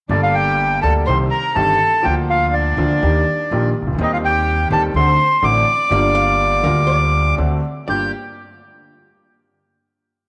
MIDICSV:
0, 0, Header, 1, 6, 480
1, 0, Start_track
1, 0, Key_signature, -2, "minor"
1, 0, Tempo, 484653
1, 89, Time_signature, 4, 2, 24, 8
1, 6327, Tempo, 490597
1, 10139, End_track
2, 0, Start_track
2, 0, Title_t, "Bandoneon"
2, 0, Program_c, 0, 23
2, 106, Note_on_c, 0, 74, 67
2, 212, Note_off_c, 0, 74, 0
2, 227, Note_on_c, 0, 77, 75
2, 343, Note_on_c, 0, 79, 81
2, 345, Note_off_c, 0, 77, 0
2, 791, Note_off_c, 0, 79, 0
2, 815, Note_on_c, 0, 81, 76
2, 925, Note_off_c, 0, 81, 0
2, 1059, Note_on_c, 0, 84, 85
2, 1169, Note_off_c, 0, 84, 0
2, 1294, Note_on_c, 0, 82, 80
2, 1535, Note_on_c, 0, 81, 82
2, 1547, Note_off_c, 0, 82, 0
2, 2021, Note_on_c, 0, 79, 77
2, 2036, Note_off_c, 0, 81, 0
2, 2131, Note_off_c, 0, 79, 0
2, 2277, Note_on_c, 0, 77, 74
2, 2510, Note_on_c, 0, 74, 68
2, 2519, Note_off_c, 0, 77, 0
2, 3664, Note_off_c, 0, 74, 0
2, 3985, Note_on_c, 0, 75, 73
2, 4075, Note_off_c, 0, 75, 0
2, 4095, Note_on_c, 0, 77, 75
2, 4140, Note_off_c, 0, 77, 0
2, 4209, Note_on_c, 0, 79, 87
2, 4638, Note_off_c, 0, 79, 0
2, 4678, Note_on_c, 0, 81, 78
2, 4780, Note_off_c, 0, 81, 0
2, 4911, Note_on_c, 0, 84, 89
2, 5388, Note_on_c, 0, 86, 98
2, 5393, Note_off_c, 0, 84, 0
2, 7270, Note_off_c, 0, 86, 0
2, 7803, Note_on_c, 0, 91, 68
2, 8017, Note_off_c, 0, 91, 0
2, 10139, End_track
3, 0, Start_track
3, 0, Title_t, "Hollow-body jazz guitar"
3, 0, Program_c, 1, 26
3, 5863, Note_on_c, 1, 74, 91
3, 5926, Note_off_c, 1, 74, 0
3, 6089, Note_on_c, 1, 77, 85
3, 6572, Note_on_c, 1, 70, 61
3, 6583, Note_off_c, 1, 77, 0
3, 6797, Note_on_c, 1, 74, 78
3, 6820, Note_off_c, 1, 70, 0
3, 7739, Note_off_c, 1, 74, 0
3, 7783, Note_on_c, 1, 74, 54
3, 8007, Note_off_c, 1, 74, 0
3, 10139, End_track
4, 0, Start_track
4, 0, Title_t, "Violin section"
4, 0, Program_c, 2, 48
4, 80, Note_on_c, 2, 62, 53
4, 198, Note_off_c, 2, 62, 0
4, 213, Note_on_c, 2, 65, 57
4, 317, Note_on_c, 2, 67, 66
4, 326, Note_off_c, 2, 65, 0
4, 777, Note_off_c, 2, 67, 0
4, 800, Note_on_c, 2, 69, 68
4, 914, Note_off_c, 2, 69, 0
4, 1046, Note_on_c, 2, 72, 71
4, 1158, Note_off_c, 2, 72, 0
4, 1283, Note_on_c, 2, 70, 65
4, 1516, Note_off_c, 2, 70, 0
4, 1522, Note_on_c, 2, 69, 75
4, 1981, Note_off_c, 2, 69, 0
4, 2000, Note_on_c, 2, 67, 64
4, 2114, Note_off_c, 2, 67, 0
4, 2256, Note_on_c, 2, 65, 55
4, 2484, Note_off_c, 2, 65, 0
4, 2491, Note_on_c, 2, 62, 69
4, 3654, Note_off_c, 2, 62, 0
4, 3972, Note_on_c, 2, 63, 60
4, 4068, Note_off_c, 2, 63, 0
4, 4086, Note_on_c, 2, 65, 53
4, 4133, Note_off_c, 2, 65, 0
4, 4205, Note_on_c, 2, 67, 67
4, 4636, Note_off_c, 2, 67, 0
4, 4677, Note_on_c, 2, 69, 72
4, 4780, Note_off_c, 2, 69, 0
4, 4917, Note_on_c, 2, 72, 70
4, 5349, Note_off_c, 2, 72, 0
4, 5384, Note_on_c, 2, 74, 88
4, 7268, Note_off_c, 2, 74, 0
4, 7790, Note_on_c, 2, 67, 54
4, 8010, Note_off_c, 2, 67, 0
4, 10139, End_track
5, 0, Start_track
5, 0, Title_t, "Grand piano"
5, 0, Program_c, 3, 0
5, 93, Note_on_c, 3, 55, 64
5, 106, Note_on_c, 3, 31, 68
5, 107, Note_on_c, 3, 43, 74
5, 109, Note_on_c, 3, 58, 54
5, 119, Note_on_c, 3, 62, 57
5, 129, Note_on_c, 3, 69, 71
5, 785, Note_off_c, 3, 55, 0
5, 792, Note_off_c, 3, 31, 0
5, 792, Note_off_c, 3, 43, 0
5, 793, Note_off_c, 3, 58, 0
5, 798, Note_off_c, 3, 62, 0
5, 803, Note_off_c, 3, 69, 0
5, 822, Note_on_c, 3, 55, 57
5, 823, Note_on_c, 3, 58, 60
5, 826, Note_on_c, 3, 62, 52
5, 828, Note_on_c, 3, 38, 72
5, 830, Note_on_c, 3, 50, 70
5, 833, Note_on_c, 3, 69, 65
5, 1024, Note_off_c, 3, 55, 0
5, 1025, Note_off_c, 3, 58, 0
5, 1026, Note_off_c, 3, 62, 0
5, 1028, Note_off_c, 3, 38, 0
5, 1028, Note_off_c, 3, 50, 0
5, 1030, Note_off_c, 3, 69, 0
5, 1077, Note_on_c, 3, 48, 78
5, 1077, Note_on_c, 3, 51, 58
5, 1079, Note_on_c, 3, 55, 50
5, 1080, Note_on_c, 3, 36, 75
5, 1085, Note_on_c, 3, 60, 61
5, 1086, Note_on_c, 3, 67, 61
5, 1272, Note_off_c, 3, 51, 0
5, 1273, Note_off_c, 3, 48, 0
5, 1274, Note_off_c, 3, 36, 0
5, 1274, Note_off_c, 3, 55, 0
5, 1277, Note_off_c, 3, 60, 0
5, 1277, Note_off_c, 3, 67, 0
5, 1540, Note_on_c, 3, 55, 56
5, 1542, Note_on_c, 3, 51, 64
5, 1545, Note_on_c, 3, 31, 72
5, 1546, Note_on_c, 3, 60, 49
5, 1548, Note_on_c, 3, 43, 69
5, 1549, Note_on_c, 3, 67, 68
5, 1744, Note_off_c, 3, 55, 0
5, 1745, Note_off_c, 3, 51, 0
5, 1746, Note_off_c, 3, 31, 0
5, 1747, Note_off_c, 3, 60, 0
5, 1748, Note_off_c, 3, 43, 0
5, 1749, Note_off_c, 3, 67, 0
5, 2001, Note_on_c, 3, 50, 67
5, 2006, Note_on_c, 3, 53, 58
5, 2014, Note_on_c, 3, 38, 75
5, 2015, Note_off_c, 3, 50, 0
5, 2022, Note_on_c, 3, 50, 74
5, 2024, Note_on_c, 3, 58, 64
5, 2038, Note_on_c, 3, 65, 74
5, 2699, Note_off_c, 3, 53, 0
5, 2703, Note_off_c, 3, 38, 0
5, 2707, Note_off_c, 3, 50, 0
5, 2708, Note_off_c, 3, 58, 0
5, 2716, Note_off_c, 3, 65, 0
5, 2751, Note_on_c, 3, 38, 73
5, 2752, Note_on_c, 3, 50, 76
5, 2755, Note_on_c, 3, 53, 66
5, 2759, Note_on_c, 3, 58, 55
5, 2763, Note_on_c, 3, 65, 68
5, 2949, Note_off_c, 3, 38, 0
5, 2951, Note_off_c, 3, 53, 0
5, 2952, Note_off_c, 3, 50, 0
5, 2953, Note_off_c, 3, 58, 0
5, 2955, Note_off_c, 3, 65, 0
5, 2992, Note_on_c, 3, 51, 68
5, 2994, Note_on_c, 3, 55, 51
5, 2995, Note_on_c, 3, 39, 75
5, 2999, Note_on_c, 3, 58, 58
5, 3001, Note_on_c, 3, 67, 66
5, 3191, Note_off_c, 3, 55, 0
5, 3192, Note_off_c, 3, 39, 0
5, 3193, Note_off_c, 3, 58, 0
5, 3194, Note_off_c, 3, 67, 0
5, 3196, Note_off_c, 3, 51, 0
5, 3486, Note_on_c, 3, 34, 70
5, 3488, Note_on_c, 3, 58, 64
5, 3490, Note_on_c, 3, 51, 60
5, 3490, Note_on_c, 3, 55, 54
5, 3492, Note_on_c, 3, 46, 67
5, 3497, Note_on_c, 3, 67, 64
5, 3675, Note_off_c, 3, 34, 0
5, 3676, Note_off_c, 3, 58, 0
5, 3677, Note_off_c, 3, 51, 0
5, 3677, Note_off_c, 3, 55, 0
5, 3678, Note_off_c, 3, 46, 0
5, 3680, Note_off_c, 3, 67, 0
5, 3784, Note_on_c, 3, 36, 43
5, 3832, Note_off_c, 3, 36, 0
5, 3838, Note_on_c, 3, 37, 53
5, 3889, Note_off_c, 3, 37, 0
5, 3910, Note_on_c, 3, 38, 62
5, 3944, Note_on_c, 3, 51, 67
5, 3954, Note_off_c, 3, 38, 0
5, 3959, Note_off_c, 3, 51, 0
5, 3960, Note_on_c, 3, 55, 57
5, 3969, Note_on_c, 3, 51, 74
5, 3970, Note_on_c, 3, 39, 81
5, 3971, Note_on_c, 3, 60, 61
5, 3995, Note_on_c, 3, 67, 78
5, 4628, Note_off_c, 3, 55, 0
5, 4633, Note_off_c, 3, 51, 0
5, 4634, Note_off_c, 3, 39, 0
5, 4634, Note_off_c, 3, 60, 0
5, 4646, Note_off_c, 3, 67, 0
5, 4670, Note_on_c, 3, 51, 76
5, 4671, Note_on_c, 3, 60, 62
5, 4674, Note_on_c, 3, 55, 59
5, 4675, Note_on_c, 3, 39, 76
5, 4676, Note_on_c, 3, 67, 76
5, 4863, Note_off_c, 3, 51, 0
5, 4863, Note_off_c, 3, 60, 0
5, 4865, Note_off_c, 3, 39, 0
5, 4865, Note_off_c, 3, 55, 0
5, 4866, Note_off_c, 3, 67, 0
5, 4913, Note_on_c, 3, 50, 76
5, 4915, Note_on_c, 3, 57, 65
5, 4917, Note_on_c, 3, 38, 78
5, 4921, Note_on_c, 3, 66, 73
5, 4925, Note_on_c, 3, 60, 64
5, 5105, Note_off_c, 3, 57, 0
5, 5106, Note_off_c, 3, 38, 0
5, 5106, Note_off_c, 3, 50, 0
5, 5108, Note_off_c, 3, 66, 0
5, 5109, Note_off_c, 3, 60, 0
5, 5370, Note_on_c, 3, 50, 61
5, 5372, Note_on_c, 3, 57, 62
5, 5374, Note_on_c, 3, 45, 79
5, 5374, Note_on_c, 3, 60, 61
5, 5381, Note_on_c, 3, 33, 81
5, 5381, Note_on_c, 3, 66, 74
5, 5571, Note_off_c, 3, 50, 0
5, 5572, Note_off_c, 3, 45, 0
5, 5572, Note_off_c, 3, 57, 0
5, 5573, Note_off_c, 3, 60, 0
5, 5576, Note_off_c, 3, 33, 0
5, 5576, Note_off_c, 3, 66, 0
5, 5838, Note_on_c, 3, 50, 64
5, 5853, Note_on_c, 3, 55, 61
5, 5858, Note_on_c, 3, 31, 77
5, 5861, Note_on_c, 3, 43, 81
5, 5869, Note_on_c, 3, 58, 68
5, 5882, Note_on_c, 3, 65, 80
5, 6527, Note_off_c, 3, 50, 0
5, 6535, Note_off_c, 3, 55, 0
5, 6537, Note_off_c, 3, 31, 0
5, 6538, Note_off_c, 3, 43, 0
5, 6542, Note_on_c, 3, 50, 60
5, 6543, Note_off_c, 3, 58, 0
5, 6549, Note_off_c, 3, 65, 0
5, 6557, Note_off_c, 3, 50, 0
5, 6564, Note_on_c, 3, 38, 83
5, 6566, Note_on_c, 3, 50, 72
5, 6566, Note_on_c, 3, 55, 64
5, 6571, Note_on_c, 3, 58, 57
5, 6587, Note_on_c, 3, 65, 70
5, 7261, Note_off_c, 3, 38, 0
5, 7262, Note_off_c, 3, 50, 0
5, 7262, Note_off_c, 3, 55, 0
5, 7264, Note_off_c, 3, 58, 0
5, 7272, Note_off_c, 3, 65, 0
5, 7294, Note_on_c, 3, 50, 70
5, 7296, Note_on_c, 3, 57, 55
5, 7297, Note_on_c, 3, 60, 57
5, 7301, Note_on_c, 3, 66, 64
5, 7303, Note_on_c, 3, 38, 65
5, 7503, Note_off_c, 3, 50, 0
5, 7503, Note_off_c, 3, 57, 0
5, 7503, Note_off_c, 3, 60, 0
5, 7505, Note_off_c, 3, 66, 0
5, 7506, Note_off_c, 3, 38, 0
5, 7792, Note_on_c, 3, 43, 51
5, 7792, Note_on_c, 3, 65, 45
5, 7793, Note_on_c, 3, 58, 44
5, 7793, Note_on_c, 3, 67, 50
5, 7989, Note_off_c, 3, 43, 0
5, 7990, Note_off_c, 3, 58, 0
5, 7990, Note_off_c, 3, 65, 0
5, 7990, Note_off_c, 3, 67, 0
5, 10139, End_track
6, 0, Start_track
6, 0, Title_t, "Upright bass"
6, 0, Program_c, 4, 32
6, 92, Note_on_c, 4, 31, 79
6, 784, Note_off_c, 4, 31, 0
6, 827, Note_on_c, 4, 38, 74
6, 1027, Note_off_c, 4, 38, 0
6, 1064, Note_on_c, 4, 36, 76
6, 1266, Note_off_c, 4, 36, 0
6, 1548, Note_on_c, 4, 31, 73
6, 1748, Note_off_c, 4, 31, 0
6, 2039, Note_on_c, 4, 38, 73
6, 2716, Note_off_c, 4, 38, 0
6, 2745, Note_on_c, 4, 38, 83
6, 2946, Note_off_c, 4, 38, 0
6, 2996, Note_on_c, 4, 39, 80
6, 3192, Note_off_c, 4, 39, 0
6, 3478, Note_on_c, 4, 34, 78
6, 3671, Note_off_c, 4, 34, 0
6, 3779, Note_on_c, 4, 36, 46
6, 3823, Note_off_c, 4, 36, 0
6, 3829, Note_on_c, 4, 37, 52
6, 3884, Note_off_c, 4, 37, 0
6, 3891, Note_on_c, 4, 38, 60
6, 3940, Note_off_c, 4, 38, 0
6, 3946, Note_on_c, 4, 39, 92
6, 4621, Note_off_c, 4, 39, 0
6, 4660, Note_on_c, 4, 39, 83
6, 4858, Note_off_c, 4, 39, 0
6, 4894, Note_on_c, 4, 38, 72
6, 5094, Note_off_c, 4, 38, 0
6, 5373, Note_on_c, 4, 33, 79
6, 5572, Note_off_c, 4, 33, 0
6, 5850, Note_on_c, 4, 31, 79
6, 6533, Note_off_c, 4, 31, 0
6, 6568, Note_on_c, 4, 38, 84
6, 7263, Note_off_c, 4, 38, 0
6, 7298, Note_on_c, 4, 38, 78
6, 7504, Note_off_c, 4, 38, 0
6, 7789, Note_on_c, 4, 31, 44
6, 7988, Note_off_c, 4, 31, 0
6, 10139, End_track
0, 0, End_of_file